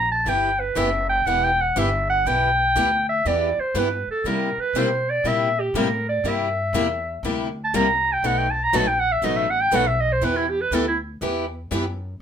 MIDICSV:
0, 0, Header, 1, 5, 480
1, 0, Start_track
1, 0, Key_signature, 1, "minor"
1, 0, Tempo, 497512
1, 258, Time_signature, 4, 2, 24, 8
1, 11786, End_track
2, 0, Start_track
2, 0, Title_t, "Clarinet"
2, 0, Program_c, 0, 71
2, 0, Note_on_c, 0, 82, 89
2, 107, Note_off_c, 0, 82, 0
2, 113, Note_on_c, 0, 81, 100
2, 275, Note_on_c, 0, 79, 90
2, 290, Note_off_c, 0, 81, 0
2, 577, Note_on_c, 0, 71, 76
2, 592, Note_off_c, 0, 79, 0
2, 746, Note_on_c, 0, 76, 91
2, 760, Note_off_c, 0, 71, 0
2, 1049, Note_off_c, 0, 76, 0
2, 1055, Note_on_c, 0, 79, 101
2, 1222, Note_on_c, 0, 78, 98
2, 1236, Note_off_c, 0, 79, 0
2, 1392, Note_on_c, 0, 79, 111
2, 1406, Note_off_c, 0, 78, 0
2, 1552, Note_on_c, 0, 78, 91
2, 1566, Note_off_c, 0, 79, 0
2, 1722, Note_on_c, 0, 76, 77
2, 1736, Note_off_c, 0, 78, 0
2, 2019, Note_off_c, 0, 76, 0
2, 2024, Note_on_c, 0, 78, 94
2, 2191, Note_on_c, 0, 79, 94
2, 2205, Note_off_c, 0, 78, 0
2, 2972, Note_off_c, 0, 79, 0
2, 2978, Note_on_c, 0, 76, 88
2, 3154, Note_on_c, 0, 74, 88
2, 3168, Note_off_c, 0, 76, 0
2, 3474, Note_on_c, 0, 72, 88
2, 3488, Note_off_c, 0, 74, 0
2, 3648, Note_on_c, 0, 71, 77
2, 3662, Note_off_c, 0, 72, 0
2, 3953, Note_off_c, 0, 71, 0
2, 3963, Note_on_c, 0, 69, 90
2, 4124, Note_on_c, 0, 70, 84
2, 4139, Note_off_c, 0, 69, 0
2, 4437, Note_on_c, 0, 71, 99
2, 4452, Note_off_c, 0, 70, 0
2, 4606, Note_on_c, 0, 72, 86
2, 4621, Note_off_c, 0, 71, 0
2, 4918, Note_on_c, 0, 74, 97
2, 4933, Note_off_c, 0, 72, 0
2, 5087, Note_on_c, 0, 76, 102
2, 5102, Note_off_c, 0, 74, 0
2, 5400, Note_on_c, 0, 67, 78
2, 5414, Note_off_c, 0, 76, 0
2, 5567, Note_on_c, 0, 70, 79
2, 5582, Note_off_c, 0, 67, 0
2, 5869, Note_off_c, 0, 70, 0
2, 5875, Note_on_c, 0, 74, 81
2, 6059, Note_on_c, 0, 76, 81
2, 6073, Note_off_c, 0, 74, 0
2, 7003, Note_off_c, 0, 76, 0
2, 7374, Note_on_c, 0, 81, 93
2, 7483, Note_on_c, 0, 82, 104
2, 7497, Note_off_c, 0, 81, 0
2, 7839, Note_on_c, 0, 79, 93
2, 7854, Note_off_c, 0, 82, 0
2, 7970, Note_on_c, 0, 78, 96
2, 7985, Note_off_c, 0, 79, 0
2, 8083, Note_on_c, 0, 79, 87
2, 8097, Note_off_c, 0, 78, 0
2, 8207, Note_on_c, 0, 81, 101
2, 8222, Note_off_c, 0, 79, 0
2, 8331, Note_on_c, 0, 82, 113
2, 8346, Note_off_c, 0, 81, 0
2, 8454, Note_on_c, 0, 81, 98
2, 8468, Note_off_c, 0, 82, 0
2, 8559, Note_on_c, 0, 79, 90
2, 8574, Note_off_c, 0, 81, 0
2, 8681, Note_on_c, 0, 78, 106
2, 8695, Note_off_c, 0, 79, 0
2, 8799, Note_on_c, 0, 76, 91
2, 8814, Note_off_c, 0, 78, 0
2, 8920, Note_on_c, 0, 75, 95
2, 8935, Note_off_c, 0, 76, 0
2, 9037, Note_on_c, 0, 76, 91
2, 9051, Note_off_c, 0, 75, 0
2, 9166, Note_on_c, 0, 78, 106
2, 9181, Note_off_c, 0, 76, 0
2, 9272, Note_on_c, 0, 79, 120
2, 9287, Note_off_c, 0, 78, 0
2, 9411, Note_on_c, 0, 78, 98
2, 9425, Note_off_c, 0, 79, 0
2, 9523, Note_on_c, 0, 76, 87
2, 9538, Note_off_c, 0, 78, 0
2, 9653, Note_on_c, 0, 75, 92
2, 9667, Note_off_c, 0, 76, 0
2, 9768, Note_on_c, 0, 72, 95
2, 9782, Note_off_c, 0, 75, 0
2, 9883, Note_on_c, 0, 71, 82
2, 9898, Note_off_c, 0, 72, 0
2, 10005, Note_on_c, 0, 64, 76
2, 10020, Note_off_c, 0, 71, 0
2, 10123, Note_on_c, 0, 67, 99
2, 10138, Note_off_c, 0, 64, 0
2, 10238, Note_on_c, 0, 71, 93
2, 10253, Note_off_c, 0, 67, 0
2, 10365, Note_on_c, 0, 69, 90
2, 10380, Note_off_c, 0, 71, 0
2, 10489, Note_off_c, 0, 69, 0
2, 10494, Note_on_c, 0, 64, 75
2, 10591, Note_off_c, 0, 64, 0
2, 11786, End_track
3, 0, Start_track
3, 0, Title_t, "Steel-string acoustic guitar"
3, 0, Program_c, 1, 25
3, 262, Note_on_c, 1, 52, 65
3, 262, Note_on_c, 1, 59, 65
3, 266, Note_on_c, 1, 64, 63
3, 269, Note_on_c, 1, 71, 67
3, 272, Note_on_c, 1, 67, 72
3, 477, Note_off_c, 1, 52, 0
3, 477, Note_off_c, 1, 59, 0
3, 479, Note_off_c, 1, 64, 0
3, 481, Note_off_c, 1, 71, 0
3, 482, Note_off_c, 1, 67, 0
3, 739, Note_on_c, 1, 59, 99
3, 740, Note_on_c, 1, 52, 88
3, 744, Note_on_c, 1, 64, 89
3, 746, Note_on_c, 1, 67, 94
3, 746, Note_on_c, 1, 71, 100
3, 854, Note_off_c, 1, 52, 0
3, 854, Note_off_c, 1, 59, 0
3, 856, Note_off_c, 1, 64, 0
3, 857, Note_off_c, 1, 71, 0
3, 858, Note_off_c, 1, 67, 0
3, 1225, Note_on_c, 1, 52, 67
3, 1228, Note_on_c, 1, 59, 65
3, 1231, Note_on_c, 1, 67, 69
3, 1232, Note_on_c, 1, 64, 68
3, 1238, Note_on_c, 1, 71, 66
3, 1440, Note_off_c, 1, 52, 0
3, 1442, Note_off_c, 1, 59, 0
3, 1443, Note_off_c, 1, 67, 0
3, 1444, Note_off_c, 1, 64, 0
3, 1447, Note_off_c, 1, 71, 0
3, 1698, Note_on_c, 1, 52, 94
3, 1704, Note_on_c, 1, 59, 88
3, 1706, Note_on_c, 1, 64, 98
3, 1711, Note_on_c, 1, 71, 99
3, 1712, Note_on_c, 1, 67, 100
3, 1815, Note_off_c, 1, 52, 0
3, 1818, Note_off_c, 1, 59, 0
3, 1819, Note_off_c, 1, 64, 0
3, 1821, Note_off_c, 1, 71, 0
3, 1822, Note_off_c, 1, 67, 0
3, 2186, Note_on_c, 1, 52, 67
3, 2191, Note_on_c, 1, 59, 63
3, 2193, Note_on_c, 1, 64, 65
3, 2194, Note_on_c, 1, 67, 63
3, 2197, Note_on_c, 1, 71, 72
3, 2402, Note_off_c, 1, 52, 0
3, 2404, Note_off_c, 1, 59, 0
3, 2405, Note_off_c, 1, 64, 0
3, 2405, Note_off_c, 1, 67, 0
3, 2407, Note_off_c, 1, 71, 0
3, 2667, Note_on_c, 1, 52, 76
3, 2668, Note_on_c, 1, 59, 93
3, 2672, Note_on_c, 1, 64, 85
3, 2675, Note_on_c, 1, 71, 101
3, 2676, Note_on_c, 1, 67, 104
3, 2780, Note_off_c, 1, 52, 0
3, 2781, Note_off_c, 1, 59, 0
3, 2783, Note_off_c, 1, 64, 0
3, 2784, Note_off_c, 1, 71, 0
3, 2785, Note_off_c, 1, 67, 0
3, 3142, Note_on_c, 1, 59, 70
3, 3143, Note_on_c, 1, 52, 69
3, 3147, Note_on_c, 1, 64, 71
3, 3148, Note_on_c, 1, 71, 67
3, 3151, Note_on_c, 1, 67, 71
3, 3360, Note_off_c, 1, 59, 0
3, 3361, Note_off_c, 1, 52, 0
3, 3363, Note_off_c, 1, 64, 0
3, 3364, Note_off_c, 1, 71, 0
3, 3365, Note_off_c, 1, 67, 0
3, 3617, Note_on_c, 1, 52, 86
3, 3622, Note_on_c, 1, 59, 82
3, 3626, Note_on_c, 1, 67, 100
3, 3627, Note_on_c, 1, 64, 99
3, 3630, Note_on_c, 1, 71, 103
3, 3736, Note_off_c, 1, 52, 0
3, 3739, Note_off_c, 1, 59, 0
3, 3741, Note_off_c, 1, 64, 0
3, 3741, Note_off_c, 1, 67, 0
3, 3743, Note_off_c, 1, 71, 0
3, 4102, Note_on_c, 1, 48, 62
3, 4108, Note_on_c, 1, 58, 77
3, 4109, Note_on_c, 1, 55, 56
3, 4112, Note_on_c, 1, 64, 71
3, 4113, Note_on_c, 1, 67, 71
3, 4321, Note_off_c, 1, 48, 0
3, 4324, Note_off_c, 1, 58, 0
3, 4325, Note_off_c, 1, 55, 0
3, 4326, Note_off_c, 1, 64, 0
3, 4327, Note_off_c, 1, 67, 0
3, 4583, Note_on_c, 1, 48, 84
3, 4583, Note_on_c, 1, 55, 99
3, 4584, Note_on_c, 1, 58, 87
3, 4588, Note_on_c, 1, 64, 103
3, 4593, Note_on_c, 1, 67, 91
3, 4700, Note_off_c, 1, 48, 0
3, 4700, Note_off_c, 1, 55, 0
3, 4701, Note_off_c, 1, 58, 0
3, 4703, Note_off_c, 1, 64, 0
3, 4705, Note_off_c, 1, 67, 0
3, 5071, Note_on_c, 1, 48, 62
3, 5071, Note_on_c, 1, 55, 72
3, 5079, Note_on_c, 1, 58, 71
3, 5080, Note_on_c, 1, 64, 72
3, 5080, Note_on_c, 1, 67, 64
3, 5286, Note_off_c, 1, 48, 0
3, 5286, Note_off_c, 1, 55, 0
3, 5290, Note_off_c, 1, 58, 0
3, 5291, Note_off_c, 1, 64, 0
3, 5291, Note_off_c, 1, 67, 0
3, 5551, Note_on_c, 1, 48, 91
3, 5554, Note_on_c, 1, 55, 88
3, 5554, Note_on_c, 1, 58, 92
3, 5557, Note_on_c, 1, 64, 92
3, 5558, Note_on_c, 1, 67, 95
3, 5664, Note_off_c, 1, 48, 0
3, 5666, Note_off_c, 1, 55, 0
3, 5666, Note_off_c, 1, 58, 0
3, 5667, Note_off_c, 1, 64, 0
3, 5668, Note_off_c, 1, 67, 0
3, 6025, Note_on_c, 1, 48, 63
3, 6028, Note_on_c, 1, 55, 68
3, 6034, Note_on_c, 1, 58, 75
3, 6035, Note_on_c, 1, 64, 79
3, 6037, Note_on_c, 1, 67, 78
3, 6243, Note_off_c, 1, 48, 0
3, 6245, Note_off_c, 1, 55, 0
3, 6248, Note_off_c, 1, 58, 0
3, 6248, Note_off_c, 1, 64, 0
3, 6249, Note_off_c, 1, 67, 0
3, 6507, Note_on_c, 1, 48, 98
3, 6510, Note_on_c, 1, 55, 93
3, 6514, Note_on_c, 1, 58, 101
3, 6518, Note_on_c, 1, 64, 89
3, 6521, Note_on_c, 1, 67, 112
3, 6622, Note_off_c, 1, 48, 0
3, 6624, Note_off_c, 1, 55, 0
3, 6626, Note_off_c, 1, 58, 0
3, 6628, Note_off_c, 1, 64, 0
3, 6629, Note_off_c, 1, 67, 0
3, 6988, Note_on_c, 1, 48, 66
3, 6990, Note_on_c, 1, 55, 67
3, 6994, Note_on_c, 1, 58, 73
3, 6998, Note_on_c, 1, 64, 73
3, 7001, Note_on_c, 1, 67, 81
3, 7205, Note_off_c, 1, 48, 0
3, 7206, Note_off_c, 1, 55, 0
3, 7208, Note_off_c, 1, 58, 0
3, 7210, Note_off_c, 1, 64, 0
3, 7211, Note_off_c, 1, 67, 0
3, 7467, Note_on_c, 1, 48, 87
3, 7469, Note_on_c, 1, 55, 95
3, 7471, Note_on_c, 1, 58, 92
3, 7475, Note_on_c, 1, 64, 108
3, 7478, Note_on_c, 1, 67, 103
3, 7582, Note_off_c, 1, 48, 0
3, 7583, Note_off_c, 1, 55, 0
3, 7584, Note_off_c, 1, 58, 0
3, 7586, Note_off_c, 1, 64, 0
3, 7587, Note_off_c, 1, 67, 0
3, 7950, Note_on_c, 1, 47, 63
3, 7950, Note_on_c, 1, 54, 67
3, 7952, Note_on_c, 1, 57, 79
3, 7956, Note_on_c, 1, 66, 67
3, 7957, Note_on_c, 1, 63, 77
3, 7960, Note_on_c, 1, 71, 64
3, 8165, Note_off_c, 1, 47, 0
3, 8165, Note_off_c, 1, 54, 0
3, 8166, Note_off_c, 1, 57, 0
3, 8168, Note_off_c, 1, 66, 0
3, 8169, Note_off_c, 1, 63, 0
3, 8170, Note_off_c, 1, 71, 0
3, 8423, Note_on_c, 1, 47, 85
3, 8426, Note_on_c, 1, 54, 87
3, 8429, Note_on_c, 1, 57, 83
3, 8431, Note_on_c, 1, 63, 107
3, 8434, Note_on_c, 1, 66, 93
3, 8436, Note_on_c, 1, 71, 99
3, 8540, Note_off_c, 1, 47, 0
3, 8541, Note_off_c, 1, 54, 0
3, 8543, Note_off_c, 1, 57, 0
3, 8544, Note_off_c, 1, 63, 0
3, 8545, Note_off_c, 1, 66, 0
3, 8546, Note_off_c, 1, 71, 0
3, 8894, Note_on_c, 1, 47, 66
3, 8899, Note_on_c, 1, 54, 65
3, 8899, Note_on_c, 1, 57, 75
3, 8900, Note_on_c, 1, 63, 68
3, 8907, Note_on_c, 1, 66, 73
3, 8907, Note_on_c, 1, 71, 76
3, 9116, Note_off_c, 1, 47, 0
3, 9119, Note_off_c, 1, 54, 0
3, 9119, Note_off_c, 1, 57, 0
3, 9119, Note_off_c, 1, 63, 0
3, 9123, Note_off_c, 1, 66, 0
3, 9123, Note_off_c, 1, 71, 0
3, 9370, Note_on_c, 1, 47, 88
3, 9374, Note_on_c, 1, 54, 86
3, 9376, Note_on_c, 1, 57, 102
3, 9378, Note_on_c, 1, 63, 96
3, 9380, Note_on_c, 1, 66, 96
3, 9383, Note_on_c, 1, 71, 109
3, 9492, Note_off_c, 1, 47, 0
3, 9494, Note_off_c, 1, 54, 0
3, 9495, Note_off_c, 1, 57, 0
3, 9496, Note_off_c, 1, 63, 0
3, 9497, Note_off_c, 1, 66, 0
3, 9498, Note_off_c, 1, 71, 0
3, 9856, Note_on_c, 1, 52, 77
3, 9857, Note_on_c, 1, 59, 67
3, 9859, Note_on_c, 1, 64, 72
3, 9863, Note_on_c, 1, 67, 66
3, 9863, Note_on_c, 1, 71, 84
3, 10076, Note_off_c, 1, 52, 0
3, 10077, Note_off_c, 1, 59, 0
3, 10078, Note_off_c, 1, 64, 0
3, 10080, Note_off_c, 1, 67, 0
3, 10080, Note_off_c, 1, 71, 0
3, 10342, Note_on_c, 1, 52, 91
3, 10346, Note_on_c, 1, 59, 90
3, 10350, Note_on_c, 1, 64, 101
3, 10351, Note_on_c, 1, 67, 100
3, 10357, Note_on_c, 1, 71, 107
3, 10457, Note_off_c, 1, 52, 0
3, 10459, Note_off_c, 1, 59, 0
3, 10461, Note_off_c, 1, 64, 0
3, 10462, Note_off_c, 1, 67, 0
3, 10465, Note_off_c, 1, 71, 0
3, 10821, Note_on_c, 1, 52, 79
3, 10825, Note_on_c, 1, 59, 70
3, 10826, Note_on_c, 1, 64, 73
3, 10830, Note_on_c, 1, 67, 80
3, 10833, Note_on_c, 1, 71, 76
3, 11038, Note_off_c, 1, 52, 0
3, 11040, Note_off_c, 1, 59, 0
3, 11041, Note_off_c, 1, 64, 0
3, 11043, Note_off_c, 1, 67, 0
3, 11044, Note_off_c, 1, 71, 0
3, 11307, Note_on_c, 1, 52, 86
3, 11309, Note_on_c, 1, 59, 96
3, 11313, Note_on_c, 1, 64, 99
3, 11315, Note_on_c, 1, 67, 94
3, 11320, Note_on_c, 1, 71, 102
3, 11419, Note_off_c, 1, 52, 0
3, 11420, Note_off_c, 1, 59, 0
3, 11422, Note_off_c, 1, 64, 0
3, 11423, Note_off_c, 1, 67, 0
3, 11425, Note_off_c, 1, 71, 0
3, 11786, End_track
4, 0, Start_track
4, 0, Title_t, "Upright bass"
4, 0, Program_c, 2, 32
4, 0, Note_on_c, 2, 34, 88
4, 239, Note_off_c, 2, 34, 0
4, 245, Note_on_c, 2, 31, 81
4, 718, Note_off_c, 2, 31, 0
4, 733, Note_on_c, 2, 30, 97
4, 1203, Note_off_c, 2, 30, 0
4, 1210, Note_on_c, 2, 28, 84
4, 1682, Note_off_c, 2, 28, 0
4, 1699, Note_on_c, 2, 31, 99
4, 2167, Note_off_c, 2, 31, 0
4, 2176, Note_on_c, 2, 35, 89
4, 2646, Note_off_c, 2, 35, 0
4, 2658, Note_on_c, 2, 38, 89
4, 3128, Note_off_c, 2, 38, 0
4, 3139, Note_on_c, 2, 40, 92
4, 3436, Note_off_c, 2, 40, 0
4, 3612, Note_on_c, 2, 43, 98
4, 3913, Note_off_c, 2, 43, 0
4, 4092, Note_on_c, 2, 48, 86
4, 4393, Note_off_c, 2, 48, 0
4, 4566, Note_on_c, 2, 47, 84
4, 5043, Note_off_c, 2, 47, 0
4, 5053, Note_on_c, 2, 46, 88
4, 5526, Note_off_c, 2, 46, 0
4, 5537, Note_on_c, 2, 45, 93
4, 6008, Note_off_c, 2, 45, 0
4, 6017, Note_on_c, 2, 43, 87
4, 6488, Note_off_c, 2, 43, 0
4, 6492, Note_on_c, 2, 40, 93
4, 6966, Note_off_c, 2, 40, 0
4, 6975, Note_on_c, 2, 38, 92
4, 7447, Note_off_c, 2, 38, 0
4, 7461, Note_on_c, 2, 36, 85
4, 7929, Note_off_c, 2, 36, 0
4, 7935, Note_on_c, 2, 35, 83
4, 8406, Note_off_c, 2, 35, 0
4, 8420, Note_on_c, 2, 34, 89
4, 8885, Note_off_c, 2, 34, 0
4, 8891, Note_on_c, 2, 33, 86
4, 9363, Note_off_c, 2, 33, 0
4, 9374, Note_on_c, 2, 35, 98
4, 9844, Note_off_c, 2, 35, 0
4, 9853, Note_on_c, 2, 40, 88
4, 10323, Note_off_c, 2, 40, 0
4, 10332, Note_on_c, 2, 38, 84
4, 10802, Note_off_c, 2, 38, 0
4, 10816, Note_on_c, 2, 40, 93
4, 11284, Note_off_c, 2, 40, 0
4, 11298, Note_on_c, 2, 42, 92
4, 11765, Note_off_c, 2, 42, 0
4, 11786, End_track
5, 0, Start_track
5, 0, Title_t, "Muted upright bass strokes"
5, 3455, Note_on_c, 9, 29, 40
5, 3552, Note_off_c, 9, 29, 0
5, 3930, Note_on_c, 9, 29, 37
5, 4026, Note_off_c, 9, 29, 0
5, 4413, Note_on_c, 9, 29, 38
5, 4510, Note_off_c, 9, 29, 0
5, 11786, End_track
0, 0, End_of_file